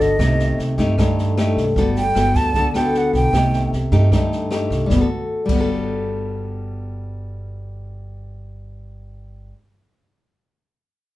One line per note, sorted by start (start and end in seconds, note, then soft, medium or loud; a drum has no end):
0.00 0.18 G1 medium
0.00 0.18 D3 medium
0.00 0.17 B3 medium
0.00 0.17 F#4 medium
0.00 0.17 A4 medium
0.00 0.60 D#5 medium
0.19 0.56 C2 medium
0.19 0.96 C3 soft
0.19 0.75 A3 soft
0.19 0.76 D#4 soft
0.19 0.76 G4 medium
0.19 kick medium
0.19 cross-stick medium
0.19 snare soft
0.39 snare soft
0.58 0.77 C2 medium
0.58 snare soft
0.78 1.52 G2 medium
0.78 0.95 A3 medium
0.78 0.95 D#4 medium
0.78 0.95 G4 medium
0.78 kick soft
0.78 snare soft
0.98 1.75 G2 soft
0.98 1.34 A3 medium
0.98 1.34 D#4 medium
0.98 1.35 G4 medium
0.98 kick medium
0.98 cross-stick medium
0.98 snare soft
1.18 snare soft
1.37 1.64 A3 medium
1.37 1.64 D#4 medium
1.37 1.64 G4 medium
1.37 cross-stick medium
1.37 snare soft
1.57 1.75 C2 medium
1.57 kick soft
1.57 snare soft
1.76 2.13 G1 medium
1.76 2.54 G3 soft
1.76 2.02 B3 soft
1.76 2.02 F#4 medium
1.76 2.03 A4 medium
1.76 kick medium
1.76 snare soft
1.96 2.38 G5 medium
1.96 snare soft
2.15 2.34 G1 medium
2.15 2.52 B3 soft
2.15 2.52 F#4 soft
2.15 2.52 A4 medium
2.15 cross-stick medium
2.15 snare soft
2.35 3.09 D2 medium
2.35 2.75 A5 medium
2.35 kick soft
2.35 snare soft
2.54 3.32 D3 medium
2.54 2.67 B3 soft
2.54 2.67 F#4 soft
2.54 2.67 A4 medium
2.54 kick medium
2.54 snare soft
2.74 3.30 B3 medium
2.74 3.31 F#4 medium
2.74 3.31 A4 medium
2.74 2.99 G5 medium
2.74 cross-stick soft
2.74 snare soft
2.94 3.14 F#5 medium
2.94 snare soft
3.13 3.32 B1 medium
3.13 3.69 G5 medium
3.13 kick soft
3.13 snare soft
3.33 3.70 C2 medium
3.33 4.10 C3 soft
3.33 3.73 A3 soft
3.33 3.73 D#4 soft
3.33 3.73 G4 medium
3.33 kick medium
3.33 cross-stick medium
3.33 snare soft
3.53 snare soft
3.73 3.91 C2 medium
3.73 snare soft
3.92 4.67 G2 medium
3.92 4.09 A3 medium
3.92 4.09 D#4 medium
3.92 4.09 G4 medium
3.92 kick soft
3.92 snare soft
4.12 4.89 G2 soft
4.12 4.48 A3 medium
4.12 4.49 D#4 medium
4.12 4.49 G4 medium
4.12 kick medium
4.12 cross-stick medium
4.12 snare soft
4.32 snare soft
4.51 4.89 A3 soft
4.51 4.89 D#4 medium
4.51 4.89 G4 medium
4.51 cross-stick medium
4.51 snare soft
4.70 4.89 C2 medium
4.70 kick soft
4.70 snare soft
4.86 5.01 G1 medium
4.86 5.04 G3 medium
4.86 kick medium
4.86 snare soft
4.92 5.04 B3 medium
4.97 5.49 F#4 medium
5.01 5.49 A4 medium
5.46 9.51 G1 medium
5.46 9.53 G3 medium
5.46 kick medium
5.46 crash medium
5.51 9.56 B3 medium
5.56 9.58 F#4 medium
5.60 9.60 A4 medium